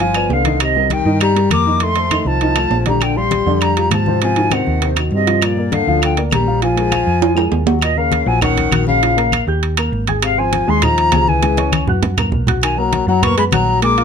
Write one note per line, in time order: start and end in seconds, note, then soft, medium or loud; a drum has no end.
0.00 0.27 G1 medium
0.00 0.33 F3 medium
0.00 0.13 F3 medium
0.00 0.13 F4 medium
0.00 0.13 F5 medium
0.00 0.34 G#5 medium
0.00 high conga soft
0.00 high timbale medium
0.14 0.40 B3 medium
0.14 0.40 B4 medium
0.14 0.40 D5 medium
0.14 high conga soft
0.14 high timbale medium
0.14 claves medium
0.29 1.00 C2 medium
0.29 0.61 D3 medium
0.29 0.62 F5 medium
0.29 high conga soft
0.29 low timbale medium
0.44 0.70 D#3 medium
0.44 0.70 D#4 medium
0.44 0.70 D#5 medium
0.44 high conga medium
0.44 high timbale medium
0.60 0.93 C3 medium
0.60 0.94 D#5 medium
0.60 high timbale medium
0.60 claves medium
0.75 1.01 G3 medium
0.75 1.01 G4 medium
0.75 1.01 A#4 medium
0.75 high conga soft
0.90 1.21 D#3 medium
0.90 1.21 G5 medium
0.90 high conga medium
0.90 high timbale medium
1.05 1.47 G2 medium
1.05 1.30 D#3 medium
1.05 1.31 D#4 medium
1.05 1.31 D#5 medium
1.20 1.49 G3 medium
1.20 1.49 A#5 loud
1.20 high conga soft
1.20 high timbale medium
1.20 claves medium
1.36 1.60 G3 medium
1.36 1.60 G4 medium
1.36 1.61 A#4 medium
1.36 high conga soft
1.36 high timbale medium
1.50 2.20 F2 medium
1.50 1.84 A#3 medium
1.50 1.84 D6 medium
1.50 high conga medium
1.50 high timbale medium
1.50 claves medium
1.66 1.78 D#3 medium
1.66 1.78 D#4 medium
1.66 1.79 D#5 medium
1.80 1.93 D#3 medium
1.80 2.28 A3 medium
1.80 1.93 D#4 medium
1.80 1.94 D#5 medium
1.80 2.28 C6 loud
1.80 high conga soft
1.80 high timbale medium
1.95 2.08 A3 medium
1.95 2.08 A4 medium
1.95 2.09 C5 medium
1.95 high conga soft
1.95 high timbale medium
2.11 2.36 D#3 medium
2.11 2.36 D#4 medium
2.11 2.36 D#5 medium
2.11 high conga medium
2.11 high timbale medium
2.11 claves medium
2.25 2.67 C2 medium
2.25 2.87 F3 medium
2.25 2.87 A5 medium
2.25 high conga soft
2.41 2.54 D#3 medium
2.41 2.54 D#4 medium
2.41 2.54 D#5 medium
2.41 high conga soft
2.41 high timbale medium
2.56 2.81 A3 medium
2.56 2.81 A4 medium
2.56 2.81 C5 medium
2.56 high conga soft
2.56 high timbale medium
2.56 claves medium
2.70 3.40 A#1 medium
2.70 high conga soft
2.70 low timbale medium
2.86 3.11 D3 medium
2.86 3.04 G3 medium
2.86 3.11 D4 medium
2.86 3.11 D5 medium
2.86 3.04 A#5 medium
2.86 high conga medium
2.86 high timbale medium
3.01 3.18 D3 medium
3.01 3.18 G5 medium
3.01 high conga soft
3.01 high timbale medium
3.01 claves medium
3.16 3.41 F3 medium
3.16 3.62 G3 medium
3.16 3.41 F4 medium
3.16 3.41 G4 medium
3.16 3.64 C6 medium
3.16 high conga soft
3.31 high conga medium
3.31 high timbale medium
3.46 3.88 F2 medium
3.46 3.71 D3 medium
3.46 3.71 D4 medium
3.46 3.72 D5 medium
3.61 3.92 G3 medium
3.61 3.92 A#5 medium
3.61 high conga soft
3.61 high timbale medium
3.61 claves medium
3.76 4.01 F3 medium
3.76 4.02 F4 medium
3.76 4.02 G4 medium
3.76 high conga soft
3.76 high timbale medium
3.91 4.61 G#2 medium
3.91 4.20 F3 medium
3.91 4.20 A5 medium
3.91 high conga medium
3.91 high timbale medium
3.91 low timbale medium
3.91 claves medium
4.06 4.19 C3 medium
4.06 4.19 C4 medium
4.06 4.20 C5 medium
4.06 high conga medium
4.21 4.34 C3 medium
4.21 4.54 F3 medium
4.21 4.34 C4 medium
4.21 4.34 C5 medium
4.21 4.54 G#5 medium
4.21 high conga soft
4.21 high timbale medium
4.36 4.49 D#3 medium
4.36 4.49 D#4 medium
4.36 4.49 F#4 medium
4.36 high conga soft
4.36 high timbale medium
4.51 4.76 C3 medium
4.51 4.97 D#3 medium
4.51 4.76 C4 medium
4.51 4.76 C5 medium
4.51 4.86 F#5 medium
4.51 high conga medium
4.51 high timbale medium
4.51 claves medium
4.66 5.09 D#2 medium
4.66 high conga soft
4.82 4.94 C3 medium
4.82 4.94 C4 medium
4.82 4.94 C5 medium
4.82 high conga soft
4.82 high timbale medium
4.96 5.21 D#3 medium
4.96 5.21 D#4 medium
4.96 5.22 F#4 medium
4.96 high conga soft
4.96 high timbale medium
4.96 claves medium
5.11 5.81 G2 medium
5.11 5.44 C3 medium
5.11 5.46 D#5 medium
5.11 high conga soft
5.27 5.51 F3 medium
5.27 5.51 F4 medium
5.27 5.52 F5 medium
5.27 high timbale medium
5.42 5.74 A#2 medium
5.42 5.75 D5 medium
5.42 high conga soft
5.42 high timbale medium
5.42 claves medium
5.57 5.82 A#3 medium
5.57 5.82 A#4 medium
5.57 5.82 D5 medium
5.57 high conga soft
5.72 6.02 D3 medium
5.72 6.03 F5 medium
5.72 high conga medium
5.72 high timbale medium
5.87 6.29 D2 medium
5.87 6.12 F3 medium
5.87 6.12 F4 medium
5.87 6.12 F5 medium
6.02 6.21 D3 medium
6.02 6.21 G5 medium
6.02 high conga soft
6.02 high timbale medium
6.02 claves medium
6.17 6.42 A#3 medium
6.17 6.42 A#4 medium
6.17 6.42 D5 medium
6.17 high conga soft
6.17 high timbale medium
6.31 7.02 A#1 medium
6.31 6.60 G3 medium
6.31 6.60 A#5 medium
6.31 high conga medium
6.31 high timbale medium
6.31 low timbale medium
6.31 claves medium
6.47 6.59 F3 medium
6.47 6.60 F4 medium
6.47 6.60 F5 medium
6.62 6.74 F3 medium
6.62 7.64 F3 medium
6.62 6.74 F4 medium
6.62 6.74 F5 medium
6.62 7.63 G#5 medium
6.62 high conga soft
6.62 high timbale medium
6.76 6.89 G#3 medium
6.76 6.89 G#4 medium
6.76 6.89 A#4 medium
6.76 high conga soft
6.76 high timbale medium
6.91 7.16 F3 medium
6.91 7.16 F4 medium
6.91 7.17 F5 medium
6.91 high conga medium
6.91 high timbale medium
6.91 claves medium
7.07 7.49 F2 medium
7.07 high conga soft
7.22 7.34 F3 medium
7.22 7.34 F4 medium
7.22 7.34 F5 medium
7.22 high conga soft
7.22 high timbale medium
7.35 7.61 G#3 medium
7.35 7.61 G#4 medium
7.35 7.61 A#4 medium
7.35 high conga soft
7.35 high timbale medium
7.35 claves medium
7.52 8.21 D#2 medium
7.52 high conga soft
7.52 low timbale medium
7.66 7.79 F#3 medium
7.66 7.79 F#4 medium
7.66 7.79 F#5 medium
7.66 high conga medium
7.66 low timbale loud
7.81 7.99 A#2 medium
7.81 7.99 D#5 medium
7.81 high conga soft
7.81 high timbale medium
7.81 claves medium
7.97 8.28 C#3 medium
7.97 8.22 A#3 medium
7.97 8.22 A#4 medium
7.97 8.29 F5 medium
7.97 8.22 A#5 medium
7.97 high conga soft
8.12 high conga medium
8.12 high timbale medium
8.26 8.69 A#1 medium
8.26 8.41 F3 medium
8.26 8.39 F#3 medium
8.26 8.39 F#4 medium
8.26 8.39 F#5 medium
8.26 8.42 G#5 medium
8.41 8.84 D#3 medium
8.41 8.67 C#4 medium
8.41 8.67 C#5 medium
8.41 8.84 F#5 medium
8.41 8.67 C#6 medium
8.41 high conga soft
8.41 low conga medium
8.41 high timbale medium
8.41 claves medium
8.57 high conga soft
8.57 low conga medium
8.57 high timbale medium
8.71 9.41 A#1 medium
8.71 8.97 F#4 medium
8.71 8.97 F#5 medium
8.71 8.97 F#6 medium
8.71 high conga medium
8.71 high timbale medium
8.71 claves medium
8.87 9.43 C#3 medium
8.87 9.43 F5 medium
8.87 high conga medium
9.02 9.15 F3 medium
9.02 9.15 F4 medium
9.02 9.15 F5 medium
9.02 high conga soft
9.02 high timbale medium
9.17 9.42 A#3 medium
9.17 9.42 A#4 medium
9.17 9.42 A#5 medium
9.17 high conga soft
9.17 high timbale medium
9.32 high conga medium
9.32 high timbale medium
9.32 claves medium
9.47 9.89 D#2 medium
9.47 9.72 G4 medium
9.47 9.72 G5 medium
9.47 9.73 G6 medium
9.47 high conga soft
9.63 high conga soft
9.63 high timbale medium
9.77 10.02 A#3 medium
9.77 10.02 A#4 medium
9.77 10.03 A#5 medium
9.77 high conga soft
9.77 high timbale medium
9.77 claves medium
9.92 10.62 G#1 medium
9.92 high conga soft
10.07 10.32 G#4 medium
10.07 10.33 G#5 medium
10.07 10.33 G#6 medium
10.07 high conga medium
10.07 high timbale medium
10.22 10.40 C3 medium
10.22 10.40 F5 medium
10.22 high conga soft
10.22 high timbale medium
10.22 claves medium
10.38 10.69 F3 medium
10.38 10.62 C4 medium
10.38 10.62 C5 medium
10.38 10.71 G#5 medium
10.38 10.62 C6 medium
10.38 high conga soft
10.53 high conga medium
10.53 high timbale medium
10.68 11.10 D#2 medium
10.68 10.80 G#3 medium
10.68 10.84 G#3 medium
10.68 10.80 G#4 medium
10.68 10.80 G#5 medium
10.68 10.85 C6 medium
10.82 11.30 F3 medium
10.82 11.07 D#4 medium
10.82 11.08 D#5 medium
10.82 11.30 A#5 loud
10.82 11.08 D#6 medium
10.82 high conga soft
10.82 low conga medium
10.82 high timbale medium
10.82 claves medium
10.98 high conga soft
10.98 high timbale medium
11.12 11.82 C#2 medium
11.12 11.37 G#4 medium
11.12 11.38 G#5 medium
11.12 11.38 G#6 medium
11.12 high conga medium
11.12 high timbale medium
11.12 low timbale medium
11.12 claves medium
11.27 11.88 E3 medium
11.27 11.88 G#5 medium
11.27 high conga medium
11.42 11.55 G#3 medium
11.42 11.55 G#4 medium
11.42 11.55 G#5 medium
11.42 high conga medium
11.42 high timbale medium
11.57 11.82 C#4 medium
11.57 11.82 C#5 medium
11.57 11.82 C#6 medium
11.57 high conga medium
11.57 high timbale medium
11.72 high conga medium
11.72 high timbale medium
11.72 claves medium
11.87 12.29 F#2 medium
11.87 12.13 F#4 medium
11.87 12.13 F#5 medium
11.87 12.13 F#6 medium
11.87 low conga medium
12.03 low conga medium
12.03 high timbale medium
12.17 12.42 A#3 medium
12.17 12.42 A#4 medium
12.17 12.43 A#5 medium
12.17 low conga medium
12.17 high timbale medium
12.17 claves medium
12.32 13.02 B1 medium
12.32 low conga medium
12.47 12.72 F#4 medium
12.47 12.73 F#5 medium
12.47 12.73 F#6 medium
12.47 low conga medium
12.47 high timbale medium
12.62 12.79 D#3 medium
12.62 12.79 G#5 medium
12.62 high conga soft
12.62 high timbale loud
12.62 claves medium
12.78 13.07 F#3 medium
12.78 13.02 A#3 medium
12.78 13.03 A#4 medium
12.78 13.08 A#5 medium
12.78 13.03 A#5 medium
12.78 high conga soft
12.93 high conga medium
12.93 high timbale medium
13.07 13.49 F#2 medium
13.07 13.25 F#3 medium
13.07 13.20 F#3 medium
13.07 13.20 F#4 medium
13.07 13.21 F#5 medium
13.07 13.24 A#5 medium
13.23 13.37 A#3 medium
13.23 13.48 B3 medium
13.23 13.48 B4 medium
13.23 13.48 B5 medium
13.23 13.38 C#6 medium
13.23 high conga soft
13.23 low conga medium
13.23 high timbale medium
13.23 claves medium
13.37 13.44 G#3 medium
13.37 13.44 B5 medium
13.37 high conga soft
13.37 high timbale medium
13.52 14.04 A#1 medium
13.52 13.80 F#3 medium
13.52 13.77 F#4 medium
13.52 13.77 F#5 medium
13.52 13.81 A#5 medium
13.52 13.77 F#6 medium
13.52 high conga medium
13.52 high timbale medium
13.52 claves medium
13.82 13.95 G#3 medium
13.82 14.04 A#3 medium
13.82 13.95 G#4 medium
13.82 13.95 G#5 medium
13.82 14.04 D6 loud
13.82 high conga soft
13.82 high timbale medium
13.98 14.04 F4 medium
13.98 14.04 F5 medium
13.98 14.04 F6 medium
13.98 high conga soft
13.98 high timbale medium